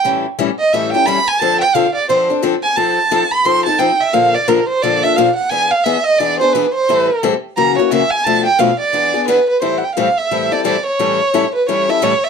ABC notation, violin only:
X:1
M:4/4
L:1/16
Q:"Swing" 1/4=176
K:Am
V:1 name="Violin"
z6 ^d2 e2 g2 b2 ^g2 | a2 g2 f2 d2 c2 z4 ^g2 | a6 b2 c'2 a2 g2 e2 | f2 d2 _B2 c2 d2 e2 f2 ^f2 |
^g2 f2 e2 ^d2 =d2 c2 B2 c2- | c4 z4 ^a2 ^c2 e2 ^g2 | a2 g2 f2 d6 B2 B2 | c3/2 ^f/2 g2 =f2 e4 d2 d2 ^c2- |
^c6 B2 c2 e2 c2 e2 |]